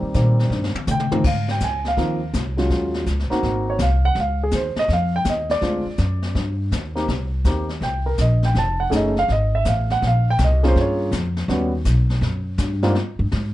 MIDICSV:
0, 0, Header, 1, 5, 480
1, 0, Start_track
1, 0, Key_signature, -4, "major"
1, 0, Tempo, 365854
1, 1624, Time_signature, 4, 2, 24, 8
1, 17762, End_track
2, 0, Start_track
2, 0, Title_t, "Grand piano"
2, 0, Program_c, 0, 0
2, 0, Note_on_c, 0, 51, 62
2, 0, Note_on_c, 0, 55, 62
2, 0, Note_on_c, 0, 58, 60
2, 0, Note_on_c, 0, 60, 67
2, 152, Note_off_c, 0, 51, 0
2, 156, Note_off_c, 0, 55, 0
2, 157, Note_off_c, 0, 58, 0
2, 161, Note_off_c, 0, 60, 0
2, 187, Note_on_c, 0, 51, 54
2, 192, Note_on_c, 0, 55, 53
2, 199, Note_on_c, 0, 58, 57
2, 199, Note_on_c, 0, 60, 66
2, 920, Note_off_c, 0, 51, 0
2, 922, Note_off_c, 0, 55, 0
2, 925, Note_off_c, 0, 60, 0
2, 926, Note_off_c, 0, 58, 0
2, 1197, Note_on_c, 0, 79, 89
2, 1456, Note_on_c, 0, 51, 52
2, 1459, Note_on_c, 0, 44, 60
2, 1463, Note_on_c, 0, 53, 54
2, 1467, Note_on_c, 0, 58, 54
2, 1469, Note_on_c, 0, 60, 76
2, 1605, Note_off_c, 0, 51, 0
2, 1606, Note_off_c, 0, 44, 0
2, 1609, Note_off_c, 0, 53, 0
2, 1610, Note_off_c, 0, 58, 0
2, 1611, Note_off_c, 0, 60, 0
2, 1618, Note_off_c, 0, 79, 0
2, 1662, Note_on_c, 0, 77, 74
2, 1951, Note_off_c, 0, 77, 0
2, 1980, Note_on_c, 0, 79, 79
2, 2118, Note_off_c, 0, 79, 0
2, 2151, Note_on_c, 0, 80, 83
2, 2434, Note_off_c, 0, 80, 0
2, 2467, Note_on_c, 0, 77, 85
2, 2581, Note_on_c, 0, 51, 51
2, 2593, Note_on_c, 0, 53, 54
2, 2594, Note_on_c, 0, 58, 50
2, 2600, Note_on_c, 0, 60, 62
2, 2866, Note_off_c, 0, 51, 0
2, 2872, Note_off_c, 0, 53, 0
2, 2872, Note_off_c, 0, 58, 0
2, 2876, Note_off_c, 0, 60, 0
2, 3040, Note_off_c, 0, 77, 0
2, 3375, Note_on_c, 0, 54, 55
2, 3377, Note_on_c, 0, 56, 44
2, 3388, Note_on_c, 0, 61, 48
2, 3389, Note_on_c, 0, 65, 66
2, 3984, Note_off_c, 0, 54, 0
2, 3985, Note_off_c, 0, 56, 0
2, 3990, Note_off_c, 0, 61, 0
2, 3991, Note_off_c, 0, 65, 0
2, 4331, Note_on_c, 0, 58, 67
2, 4339, Note_on_c, 0, 60, 67
2, 4343, Note_on_c, 0, 63, 59
2, 4351, Note_on_c, 0, 66, 80
2, 4851, Note_on_c, 0, 73, 74
2, 4941, Note_off_c, 0, 58, 0
2, 4945, Note_off_c, 0, 60, 0
2, 4947, Note_off_c, 0, 63, 0
2, 4951, Note_off_c, 0, 66, 0
2, 4990, Note_off_c, 0, 73, 0
2, 5015, Note_on_c, 0, 77, 76
2, 5303, Note_off_c, 0, 77, 0
2, 5317, Note_on_c, 0, 78, 111
2, 5462, Note_off_c, 0, 78, 0
2, 5512, Note_on_c, 0, 77, 78
2, 5792, Note_off_c, 0, 77, 0
2, 5819, Note_on_c, 0, 68, 70
2, 5953, Note_off_c, 0, 68, 0
2, 5975, Note_on_c, 0, 72, 72
2, 6262, Note_off_c, 0, 72, 0
2, 6288, Note_on_c, 0, 75, 95
2, 6427, Note_off_c, 0, 75, 0
2, 6472, Note_on_c, 0, 77, 85
2, 6751, Note_off_c, 0, 77, 0
2, 6768, Note_on_c, 0, 79, 96
2, 6907, Note_off_c, 0, 79, 0
2, 6948, Note_on_c, 0, 75, 73
2, 7229, Note_off_c, 0, 75, 0
2, 7231, Note_on_c, 0, 74, 92
2, 7364, Note_on_c, 0, 56, 57
2, 7374, Note_on_c, 0, 60, 53
2, 7379, Note_on_c, 0, 65, 64
2, 7381, Note_on_c, 0, 62, 46
2, 7654, Note_off_c, 0, 56, 0
2, 7659, Note_off_c, 0, 60, 0
2, 7661, Note_off_c, 0, 65, 0
2, 7662, Note_off_c, 0, 62, 0
2, 8291, Note_off_c, 0, 74, 0
2, 9124, Note_on_c, 0, 58, 63
2, 9125, Note_on_c, 0, 60, 55
2, 9131, Note_on_c, 0, 63, 54
2, 9138, Note_on_c, 0, 67, 60
2, 9274, Note_off_c, 0, 58, 0
2, 9274, Note_off_c, 0, 60, 0
2, 9277, Note_off_c, 0, 63, 0
2, 9281, Note_off_c, 0, 67, 0
2, 9772, Note_on_c, 0, 58, 46
2, 9782, Note_on_c, 0, 60, 41
2, 9783, Note_on_c, 0, 63, 46
2, 9789, Note_on_c, 0, 67, 62
2, 10059, Note_off_c, 0, 58, 0
2, 10064, Note_off_c, 0, 60, 0
2, 10065, Note_off_c, 0, 63, 0
2, 10068, Note_off_c, 0, 67, 0
2, 10278, Note_on_c, 0, 79, 77
2, 10575, Note_off_c, 0, 79, 0
2, 10577, Note_on_c, 0, 70, 60
2, 10733, Note_off_c, 0, 70, 0
2, 10775, Note_on_c, 0, 75, 72
2, 11064, Note_off_c, 0, 75, 0
2, 11090, Note_on_c, 0, 79, 81
2, 11230, Note_off_c, 0, 79, 0
2, 11264, Note_on_c, 0, 81, 90
2, 11544, Note_on_c, 0, 78, 90
2, 11550, Note_off_c, 0, 81, 0
2, 11676, Note_on_c, 0, 57, 62
2, 11683, Note_on_c, 0, 61, 54
2, 11692, Note_on_c, 0, 68, 67
2, 11695, Note_on_c, 0, 63, 55
2, 11698, Note_off_c, 0, 78, 0
2, 11751, Note_on_c, 0, 75, 73
2, 11973, Note_off_c, 0, 57, 0
2, 11977, Note_off_c, 0, 61, 0
2, 11982, Note_off_c, 0, 68, 0
2, 11983, Note_off_c, 0, 63, 0
2, 12034, Note_off_c, 0, 75, 0
2, 12054, Note_on_c, 0, 77, 107
2, 12193, Note_off_c, 0, 77, 0
2, 12228, Note_on_c, 0, 75, 82
2, 12513, Note_off_c, 0, 75, 0
2, 12529, Note_on_c, 0, 76, 90
2, 12671, Note_off_c, 0, 76, 0
2, 12707, Note_on_c, 0, 77, 71
2, 12993, Note_off_c, 0, 77, 0
2, 13011, Note_on_c, 0, 78, 100
2, 13153, Note_off_c, 0, 78, 0
2, 13214, Note_on_c, 0, 77, 80
2, 13488, Note_off_c, 0, 77, 0
2, 13520, Note_on_c, 0, 79, 101
2, 13648, Note_off_c, 0, 79, 0
2, 13701, Note_on_c, 0, 75, 77
2, 13951, Note_on_c, 0, 68, 69
2, 13955, Note_on_c, 0, 58, 63
2, 13964, Note_on_c, 0, 61, 69
2, 13970, Note_on_c, 0, 65, 77
2, 13972, Note_off_c, 0, 75, 0
2, 14012, Note_on_c, 0, 72, 89
2, 14135, Note_off_c, 0, 72, 0
2, 14180, Note_on_c, 0, 73, 75
2, 14557, Note_off_c, 0, 68, 0
2, 14559, Note_off_c, 0, 58, 0
2, 14563, Note_off_c, 0, 61, 0
2, 14566, Note_off_c, 0, 65, 0
2, 14592, Note_off_c, 0, 73, 0
2, 15076, Note_on_c, 0, 55, 54
2, 15079, Note_on_c, 0, 59, 60
2, 15087, Note_on_c, 0, 61, 57
2, 15092, Note_on_c, 0, 66, 61
2, 15357, Note_off_c, 0, 55, 0
2, 15359, Note_off_c, 0, 59, 0
2, 15363, Note_off_c, 0, 61, 0
2, 15365, Note_off_c, 0, 66, 0
2, 16830, Note_on_c, 0, 55, 73
2, 16831, Note_on_c, 0, 44, 76
2, 16837, Note_on_c, 0, 58, 69
2, 16837, Note_on_c, 0, 60, 73
2, 16838, Note_on_c, 0, 65, 81
2, 16974, Note_off_c, 0, 55, 0
2, 16975, Note_off_c, 0, 44, 0
2, 16978, Note_off_c, 0, 58, 0
2, 16978, Note_off_c, 0, 60, 0
2, 16979, Note_off_c, 0, 65, 0
2, 17762, End_track
3, 0, Start_track
3, 0, Title_t, "Upright bass"
3, 0, Program_c, 1, 32
3, 189, Note_on_c, 1, 46, 94
3, 646, Note_off_c, 1, 46, 0
3, 654, Note_on_c, 1, 43, 90
3, 955, Note_off_c, 1, 43, 0
3, 1143, Note_on_c, 1, 48, 96
3, 1439, Note_off_c, 1, 48, 0
3, 1625, Note_on_c, 1, 44, 73
3, 2089, Note_off_c, 1, 44, 0
3, 2109, Note_on_c, 1, 37, 80
3, 2570, Note_off_c, 1, 37, 0
3, 2588, Note_on_c, 1, 39, 75
3, 3048, Note_off_c, 1, 39, 0
3, 3064, Note_on_c, 1, 36, 84
3, 3526, Note_off_c, 1, 36, 0
3, 3541, Note_on_c, 1, 39, 82
3, 4004, Note_off_c, 1, 39, 0
3, 4020, Note_on_c, 1, 37, 89
3, 4313, Note_off_c, 1, 37, 0
3, 4499, Note_on_c, 1, 32, 74
3, 4962, Note_off_c, 1, 32, 0
3, 4969, Note_on_c, 1, 36, 86
3, 5437, Note_off_c, 1, 36, 0
3, 5446, Note_on_c, 1, 37, 91
3, 5915, Note_off_c, 1, 37, 0
3, 5926, Note_on_c, 1, 39, 89
3, 6224, Note_off_c, 1, 39, 0
3, 6409, Note_on_c, 1, 41, 90
3, 6876, Note_off_c, 1, 41, 0
3, 6886, Note_on_c, 1, 39, 89
3, 7355, Note_off_c, 1, 39, 0
3, 7364, Note_on_c, 1, 38, 86
3, 7663, Note_off_c, 1, 38, 0
3, 7850, Note_on_c, 1, 42, 96
3, 8317, Note_off_c, 1, 42, 0
3, 8332, Note_on_c, 1, 43, 87
3, 8798, Note_off_c, 1, 43, 0
3, 8812, Note_on_c, 1, 39, 88
3, 9278, Note_off_c, 1, 39, 0
3, 9288, Note_on_c, 1, 36, 81
3, 9757, Note_off_c, 1, 36, 0
3, 9768, Note_on_c, 1, 39, 89
3, 10238, Note_off_c, 1, 39, 0
3, 10244, Note_on_c, 1, 36, 83
3, 10715, Note_off_c, 1, 36, 0
3, 10730, Note_on_c, 1, 34, 92
3, 11199, Note_off_c, 1, 34, 0
3, 11212, Note_on_c, 1, 29, 85
3, 11681, Note_off_c, 1, 29, 0
3, 11698, Note_on_c, 1, 30, 86
3, 12165, Note_off_c, 1, 30, 0
3, 12179, Note_on_c, 1, 32, 85
3, 12646, Note_off_c, 1, 32, 0
3, 12663, Note_on_c, 1, 33, 87
3, 13128, Note_off_c, 1, 33, 0
3, 13145, Note_on_c, 1, 34, 83
3, 13610, Note_off_c, 1, 34, 0
3, 13628, Note_on_c, 1, 36, 104
3, 14092, Note_off_c, 1, 36, 0
3, 14112, Note_on_c, 1, 43, 92
3, 14574, Note_off_c, 1, 43, 0
3, 14584, Note_on_c, 1, 41, 94
3, 15051, Note_off_c, 1, 41, 0
3, 15065, Note_on_c, 1, 39, 90
3, 15532, Note_off_c, 1, 39, 0
3, 15550, Note_on_c, 1, 35, 96
3, 16015, Note_off_c, 1, 35, 0
3, 16022, Note_on_c, 1, 42, 95
3, 16491, Note_off_c, 1, 42, 0
3, 16504, Note_on_c, 1, 43, 100
3, 16973, Note_off_c, 1, 43, 0
3, 17306, Note_on_c, 1, 43, 76
3, 17465, Note_off_c, 1, 43, 0
3, 17483, Note_on_c, 1, 44, 68
3, 17762, Note_off_c, 1, 44, 0
3, 17762, End_track
4, 0, Start_track
4, 0, Title_t, "Muted upright bass strokes"
4, 26, Note_on_c, 9, 29, 44
4, 157, Note_off_c, 9, 29, 0
4, 973, Note_on_c, 9, 29, 42
4, 1104, Note_off_c, 9, 29, 0
4, 1460, Note_on_c, 9, 29, 43
4, 1591, Note_off_c, 9, 29, 0
4, 4341, Note_on_c, 9, 29, 37
4, 4472, Note_off_c, 9, 29, 0
4, 6236, Note_on_c, 9, 29, 40
4, 6367, Note_off_c, 9, 29, 0
4, 7680, Note_on_c, 9, 29, 35
4, 7811, Note_off_c, 9, 29, 0
4, 17762, End_track
5, 0, Start_track
5, 0, Title_t, "Drums"
5, 185, Note_on_c, 9, 44, 49
5, 192, Note_on_c, 9, 36, 16
5, 192, Note_on_c, 9, 38, 57
5, 317, Note_off_c, 9, 44, 0
5, 323, Note_off_c, 9, 36, 0
5, 323, Note_off_c, 9, 38, 0
5, 514, Note_on_c, 9, 38, 38
5, 646, Note_off_c, 9, 38, 0
5, 676, Note_on_c, 9, 38, 44
5, 807, Note_off_c, 9, 38, 0
5, 836, Note_on_c, 9, 38, 52
5, 967, Note_off_c, 9, 38, 0
5, 989, Note_on_c, 9, 48, 66
5, 1120, Note_off_c, 9, 48, 0
5, 1144, Note_on_c, 9, 44, 61
5, 1150, Note_on_c, 9, 47, 64
5, 1275, Note_off_c, 9, 44, 0
5, 1282, Note_off_c, 9, 47, 0
5, 1308, Note_on_c, 9, 47, 72
5, 1439, Note_off_c, 9, 47, 0
5, 1465, Note_on_c, 9, 47, 91
5, 1596, Note_off_c, 9, 47, 0
5, 1628, Note_on_c, 9, 25, 43
5, 1628, Note_on_c, 9, 38, 38
5, 1628, Note_on_c, 9, 49, 67
5, 1629, Note_on_c, 9, 36, 73
5, 1760, Note_off_c, 9, 36, 0
5, 1760, Note_off_c, 9, 38, 0
5, 1760, Note_off_c, 9, 49, 0
5, 1945, Note_on_c, 9, 38, 46
5, 2077, Note_off_c, 9, 38, 0
5, 2100, Note_on_c, 9, 44, 47
5, 2107, Note_on_c, 9, 38, 46
5, 2109, Note_on_c, 9, 36, 17
5, 2231, Note_off_c, 9, 44, 0
5, 2238, Note_off_c, 9, 38, 0
5, 2240, Note_off_c, 9, 36, 0
5, 2422, Note_on_c, 9, 38, 34
5, 2553, Note_off_c, 9, 38, 0
5, 2587, Note_off_c, 9, 25, 0
5, 2587, Note_on_c, 9, 25, 43
5, 2587, Note_on_c, 9, 38, 37
5, 2589, Note_on_c, 9, 36, 20
5, 2719, Note_off_c, 9, 38, 0
5, 2720, Note_off_c, 9, 36, 0
5, 3064, Note_on_c, 9, 44, 60
5, 3067, Note_on_c, 9, 36, 20
5, 3070, Note_on_c, 9, 38, 51
5, 3195, Note_off_c, 9, 44, 0
5, 3198, Note_off_c, 9, 36, 0
5, 3201, Note_off_c, 9, 38, 0
5, 3382, Note_on_c, 9, 38, 36
5, 3513, Note_off_c, 9, 38, 0
5, 3544, Note_on_c, 9, 36, 23
5, 3545, Note_off_c, 9, 25, 0
5, 3545, Note_on_c, 9, 25, 46
5, 3545, Note_on_c, 9, 38, 43
5, 3675, Note_off_c, 9, 36, 0
5, 3676, Note_off_c, 9, 38, 0
5, 3858, Note_on_c, 9, 38, 44
5, 3990, Note_off_c, 9, 38, 0
5, 4018, Note_on_c, 9, 44, 44
5, 4022, Note_on_c, 9, 36, 19
5, 4024, Note_on_c, 9, 38, 43
5, 4149, Note_off_c, 9, 44, 0
5, 4154, Note_off_c, 9, 36, 0
5, 4155, Note_off_c, 9, 38, 0
5, 4189, Note_on_c, 9, 38, 26
5, 4320, Note_off_c, 9, 38, 0
5, 4345, Note_on_c, 9, 38, 41
5, 4476, Note_off_c, 9, 38, 0
5, 4500, Note_on_c, 9, 36, 18
5, 4502, Note_off_c, 9, 25, 0
5, 4502, Note_on_c, 9, 25, 39
5, 4502, Note_on_c, 9, 38, 43
5, 4631, Note_off_c, 9, 36, 0
5, 4633, Note_off_c, 9, 38, 0
5, 4971, Note_on_c, 9, 44, 59
5, 4977, Note_on_c, 9, 36, 25
5, 4977, Note_on_c, 9, 38, 61
5, 5102, Note_off_c, 9, 44, 0
5, 5108, Note_off_c, 9, 36, 0
5, 5109, Note_off_c, 9, 38, 0
5, 5448, Note_off_c, 9, 25, 0
5, 5448, Note_on_c, 9, 25, 51
5, 5448, Note_on_c, 9, 38, 39
5, 5453, Note_on_c, 9, 36, 26
5, 5579, Note_off_c, 9, 38, 0
5, 5584, Note_off_c, 9, 36, 0
5, 5921, Note_on_c, 9, 44, 49
5, 5928, Note_on_c, 9, 38, 48
5, 5931, Note_on_c, 9, 36, 19
5, 6052, Note_off_c, 9, 44, 0
5, 6059, Note_off_c, 9, 38, 0
5, 6062, Note_off_c, 9, 36, 0
5, 6250, Note_on_c, 9, 38, 61
5, 6381, Note_off_c, 9, 38, 0
5, 6412, Note_off_c, 9, 25, 0
5, 6412, Note_on_c, 9, 25, 40
5, 6412, Note_on_c, 9, 36, 22
5, 6412, Note_on_c, 9, 38, 38
5, 6543, Note_off_c, 9, 36, 0
5, 6543, Note_off_c, 9, 38, 0
5, 6884, Note_on_c, 9, 44, 51
5, 6891, Note_on_c, 9, 38, 57
5, 6892, Note_on_c, 9, 36, 21
5, 7016, Note_off_c, 9, 44, 0
5, 7022, Note_off_c, 9, 38, 0
5, 7023, Note_off_c, 9, 36, 0
5, 7208, Note_on_c, 9, 38, 34
5, 7339, Note_off_c, 9, 38, 0
5, 7369, Note_off_c, 9, 25, 0
5, 7369, Note_on_c, 9, 25, 45
5, 7369, Note_on_c, 9, 38, 48
5, 7370, Note_on_c, 9, 36, 20
5, 7500, Note_off_c, 9, 38, 0
5, 7501, Note_off_c, 9, 36, 0
5, 7841, Note_on_c, 9, 44, 41
5, 7847, Note_on_c, 9, 38, 49
5, 7850, Note_on_c, 9, 36, 16
5, 7972, Note_off_c, 9, 44, 0
5, 7979, Note_off_c, 9, 38, 0
5, 7982, Note_off_c, 9, 36, 0
5, 8165, Note_on_c, 9, 38, 38
5, 8297, Note_off_c, 9, 38, 0
5, 8333, Note_off_c, 9, 25, 0
5, 8333, Note_on_c, 9, 25, 42
5, 8333, Note_on_c, 9, 36, 26
5, 8333, Note_on_c, 9, 38, 40
5, 8464, Note_off_c, 9, 36, 0
5, 8464, Note_off_c, 9, 38, 0
5, 8813, Note_on_c, 9, 44, 56
5, 8814, Note_on_c, 9, 36, 16
5, 8820, Note_on_c, 9, 38, 62
5, 8945, Note_off_c, 9, 44, 0
5, 8946, Note_off_c, 9, 36, 0
5, 8951, Note_off_c, 9, 38, 0
5, 9134, Note_on_c, 9, 38, 35
5, 9266, Note_off_c, 9, 38, 0
5, 9292, Note_on_c, 9, 36, 20
5, 9293, Note_off_c, 9, 25, 0
5, 9293, Note_on_c, 9, 25, 48
5, 9293, Note_on_c, 9, 38, 42
5, 9423, Note_off_c, 9, 36, 0
5, 9425, Note_off_c, 9, 38, 0
5, 9768, Note_on_c, 9, 44, 50
5, 9771, Note_on_c, 9, 36, 21
5, 9775, Note_on_c, 9, 38, 53
5, 9900, Note_off_c, 9, 44, 0
5, 9902, Note_off_c, 9, 36, 0
5, 9906, Note_off_c, 9, 38, 0
5, 10091, Note_on_c, 9, 38, 35
5, 10222, Note_off_c, 9, 38, 0
5, 10251, Note_on_c, 9, 36, 21
5, 10254, Note_off_c, 9, 25, 0
5, 10254, Note_on_c, 9, 25, 44
5, 10254, Note_on_c, 9, 38, 45
5, 10382, Note_off_c, 9, 36, 0
5, 10385, Note_off_c, 9, 38, 0
5, 10728, Note_on_c, 9, 44, 49
5, 10733, Note_on_c, 9, 36, 21
5, 10734, Note_on_c, 9, 38, 57
5, 10859, Note_off_c, 9, 44, 0
5, 10864, Note_off_c, 9, 36, 0
5, 10865, Note_off_c, 9, 38, 0
5, 11055, Note_on_c, 9, 38, 38
5, 11186, Note_off_c, 9, 38, 0
5, 11216, Note_on_c, 9, 36, 21
5, 11218, Note_off_c, 9, 25, 0
5, 11218, Note_on_c, 9, 25, 46
5, 11218, Note_on_c, 9, 38, 47
5, 11347, Note_off_c, 9, 36, 0
5, 11349, Note_off_c, 9, 38, 0
5, 11700, Note_on_c, 9, 36, 22
5, 11700, Note_on_c, 9, 44, 54
5, 11706, Note_on_c, 9, 38, 56
5, 11831, Note_off_c, 9, 36, 0
5, 11831, Note_off_c, 9, 44, 0
5, 11838, Note_off_c, 9, 38, 0
5, 12025, Note_on_c, 9, 38, 37
5, 12156, Note_off_c, 9, 38, 0
5, 12183, Note_on_c, 9, 36, 25
5, 12185, Note_off_c, 9, 25, 0
5, 12185, Note_on_c, 9, 25, 49
5, 12185, Note_on_c, 9, 38, 45
5, 12314, Note_off_c, 9, 36, 0
5, 12316, Note_off_c, 9, 38, 0
5, 12661, Note_on_c, 9, 44, 55
5, 12665, Note_on_c, 9, 36, 25
5, 12667, Note_on_c, 9, 38, 62
5, 12792, Note_off_c, 9, 44, 0
5, 12796, Note_off_c, 9, 36, 0
5, 12798, Note_off_c, 9, 38, 0
5, 12989, Note_on_c, 9, 38, 42
5, 13120, Note_off_c, 9, 38, 0
5, 13148, Note_on_c, 9, 36, 25
5, 13150, Note_off_c, 9, 25, 0
5, 13150, Note_on_c, 9, 25, 55
5, 13150, Note_on_c, 9, 38, 46
5, 13280, Note_off_c, 9, 36, 0
5, 13281, Note_off_c, 9, 38, 0
5, 13626, Note_on_c, 9, 44, 59
5, 13632, Note_on_c, 9, 36, 18
5, 13633, Note_on_c, 9, 38, 55
5, 13757, Note_off_c, 9, 44, 0
5, 13763, Note_off_c, 9, 36, 0
5, 13764, Note_off_c, 9, 38, 0
5, 13955, Note_on_c, 9, 38, 41
5, 14086, Note_off_c, 9, 38, 0
5, 14114, Note_on_c, 9, 36, 19
5, 14118, Note_off_c, 9, 25, 0
5, 14118, Note_on_c, 9, 25, 54
5, 14118, Note_on_c, 9, 38, 45
5, 14245, Note_off_c, 9, 36, 0
5, 14249, Note_off_c, 9, 38, 0
5, 14591, Note_on_c, 9, 44, 52
5, 14592, Note_on_c, 9, 36, 23
5, 14597, Note_on_c, 9, 38, 68
5, 14722, Note_off_c, 9, 44, 0
5, 14723, Note_off_c, 9, 36, 0
5, 14728, Note_off_c, 9, 38, 0
5, 14912, Note_on_c, 9, 38, 43
5, 15043, Note_off_c, 9, 38, 0
5, 15070, Note_on_c, 9, 36, 24
5, 15075, Note_off_c, 9, 25, 0
5, 15075, Note_on_c, 9, 25, 50
5, 15075, Note_on_c, 9, 38, 45
5, 15201, Note_off_c, 9, 36, 0
5, 15206, Note_off_c, 9, 38, 0
5, 15546, Note_on_c, 9, 44, 51
5, 15551, Note_on_c, 9, 36, 23
5, 15552, Note_on_c, 9, 38, 49
5, 15677, Note_off_c, 9, 44, 0
5, 15682, Note_off_c, 9, 36, 0
5, 15683, Note_off_c, 9, 38, 0
5, 15872, Note_on_c, 9, 38, 39
5, 16003, Note_off_c, 9, 38, 0
5, 16030, Note_on_c, 9, 36, 25
5, 16032, Note_off_c, 9, 25, 0
5, 16032, Note_on_c, 9, 25, 44
5, 16032, Note_on_c, 9, 38, 44
5, 16161, Note_off_c, 9, 36, 0
5, 16163, Note_off_c, 9, 38, 0
5, 16502, Note_on_c, 9, 44, 60
5, 16509, Note_on_c, 9, 38, 68
5, 16510, Note_on_c, 9, 36, 28
5, 16634, Note_off_c, 9, 44, 0
5, 16640, Note_off_c, 9, 38, 0
5, 16641, Note_off_c, 9, 36, 0
5, 16827, Note_on_c, 9, 38, 42
5, 16958, Note_off_c, 9, 38, 0
5, 16989, Note_off_c, 9, 25, 0
5, 16989, Note_on_c, 9, 25, 41
5, 16989, Note_on_c, 9, 38, 45
5, 17120, Note_off_c, 9, 38, 0
5, 17471, Note_on_c, 9, 38, 60
5, 17602, Note_off_c, 9, 38, 0
5, 17762, Note_off_c, 9, 25, 0
5, 17762, End_track
0, 0, End_of_file